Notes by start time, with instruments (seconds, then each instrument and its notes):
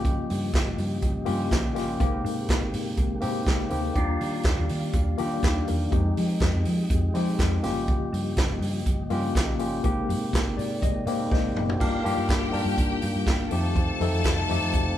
Already playing: fingered electric bass G1, tonewheel organ C#3 F3 D#4 G4, tine electric piano A#3 C#4 F4 G4
0.05 kick, closed hi-hat
0.30 fingered electric bass G2, open hi-hat
0.53 fingered electric bass G1, kick, snare, clap, closed hi-hat
0.66 fingered electric bass G1
0.78 fingered electric bass G2, open hi-hat
1.02 fingered electric bass G1, kick, closed hi-hat
1.25 fingered electric bass G2, tine electric piano A#3 C#4 F4 G4, open hi-hat
1.51 fingered electric bass A#1, kick, snare, clap, closed hi-hat
1.74 fingered electric bass G1, tine electric piano A#3 C#4 F4 G4, snare, open hi-hat
2.00 fingered electric bass G#1, tonewheel organ C3 G#3 A#3, tine electric piano A#3 C4 D#4 G4, kick, closed hi-hat
2.24 fingered electric bass G#2, open hi-hat
2.49 fingered electric bass G#1, kick, snare, clap, closed hi-hat
2.61 fingered electric bass G#1
2.74 fingered electric bass G#2, open hi-hat
2.97 fingered electric bass G#1, kick, closed hi-hat
3.20 fingered electric bass G#2, tine electric piano A#3 C4 D#4 G4, open hi-hat
3.46 fingered electric bass G#1, kick, snare, clap, closed hi-hat
3.70 fingered electric bass D2, tine electric piano A#3 C4 D#4 G4, open hi-hat
3.94 fingered electric bass D#2, tonewheel organ D#3 G3 D4 F4, tine electric piano A#3 D4 F4 G4, kick, closed hi-hat
4.21 fingered electric bass D#3, open hi-hat
4.43 fingered electric bass D#2, kick, snare, clap, closed hi-hat
4.58 fingered electric bass D#2
4.69 fingered electric bass D#3, open hi-hat
4.93 fingered electric bass D#2, kick, closed hi-hat
5.18 fingered electric bass D#3, tine electric piano A#3 D4 F4 G4, open hi-hat
5.43 fingered electric bass D#2, tine electric piano D#4 G4, kick, snare, clap, closed hi-hat
5.68 fingered electric bass E2, tine electric piano G4 A#4, open hi-hat
5.90 fingered electric bass F2, tonewheel organ F3 G#3 D#4 G4, tine electric piano G#3 C4 D#4 G4, kick, closed hi-hat
6.17 fingered electric bass F3, open hi-hat
6.40 fingered electric bass F2, kick, snare, clap, closed hi-hat
6.54 fingered electric bass F2
6.65 fingered electric bass F3, open hi-hat
6.90 fingered electric bass F2, kick, closed hi-hat
7.14 fingered electric bass F3, tine electric piano G#3 C4 D#4 G4, open hi-hat
7.39 fingered electric bass F2, kick, snare, clap, closed hi-hat
7.63 fingered electric bass G1, tonewheel organ C#3, tine electric piano A#3 C#4 F4 G4, snare, open hi-hat
7.88 kick, closed hi-hat
8.13 fingered electric bass G2, open hi-hat
8.37 fingered electric bass G1, kick, snare, clap, closed hi-hat
8.49 fingered electric bass G1
8.61 fingered electric bass G2, open hi-hat
8.86 fingered electric bass G1, kick, closed hi-hat
9.10 fingered electric bass G2, tine electric piano A#3 C#4 F4 G4, open hi-hat
9.35 fingered electric bass A#1, kick, snare, clap, closed hi-hat
9.59 fingered electric bass G1, tine electric piano A#3 C#4 F4 G4, open hi-hat
9.84 fingered electric bass G#1, tonewheel organ C3 G#3 A#3, tine electric piano A#3 C4 D#4 G4, kick, closed hi-hat
10.09 fingered electric bass G#2, open hi-hat
10.33 fingered electric bass G#1, kick, snare, clap, closed hi-hat
10.46 fingered electric bass G#1
10.57 fingered electric bass G#2, tine electric piano D5, open hi-hat
10.82 fingered electric bass G#1, tine electric piano D#5, kick, closed hi-hat
11.05 fingered electric bass G#2, tine electric piano A#3 C4 D#4 G4, open hi-hat
11.31 fingered electric bass G#1, tine electric piano C5 D#5 G5, kick, snare
11.55 fingered electric bass F#1, tine electric piano D#4 G4, mid tom
11.69 floor tom
11.79 fingered electric bass G1, tonewheel organ D3 G3 A#3 F4, tine electric piano A#3 D4 F4 G4, string section G4 G5, kick, crash
12.04 fingered electric bass G2, tine electric piano A#3 D4 F4 G4, open hi-hat
12.17 fingered electric bass G2
12.29 fingered electric bass G1, kick, snare, clap, closed hi-hat
12.52 fingered electric bass G2, tine electric piano A#3 D4 F4 A#4, open hi-hat
12.65 fingered electric bass G2
12.78 fingered electric bass G1, kick, closed hi-hat
13.02 fingered electric bass G2, open hi-hat
13.15 fingered electric bass G2
13.27 fingered electric bass G1, kick, snare, clap, closed hi-hat
13.51 fingered electric bass F2, tonewheel organ D#3 A3 C4, tine electric piano A3 C4 D#4 G4, string section A4 A5, open hi-hat
13.76 kick, closed hi-hat
14.00 fingered electric bass F2, tine electric piano A3 C4 D#4 A4, open hi-hat
14.12 fingered electric bass F2
14.24 fingered electric bass F1, kick, snare, clap, closed hi-hat
14.49 fingered electric bass F2, tine electric piano A3 C4 D#4 G4, open hi-hat
14.61 fingered electric bass F2
14.73 fingered electric bass F1, kick, closed hi-hat